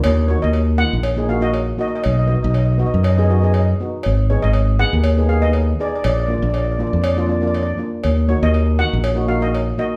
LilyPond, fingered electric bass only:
\new Staff \with { instrumentName = "Fingered electric bass" } { \clef bass \time 4/4 \key ees \minor \tempo 4 = 120 ees,8. ees,4 bes,,2 r16 | b,,8. b,,4 fis,2 r16 | aes,,8. aes,,4 ees,2 r16 | bes,,8. bes,,4 f,2 r16 |
ees,8. ees,4 bes,,2 r16 | }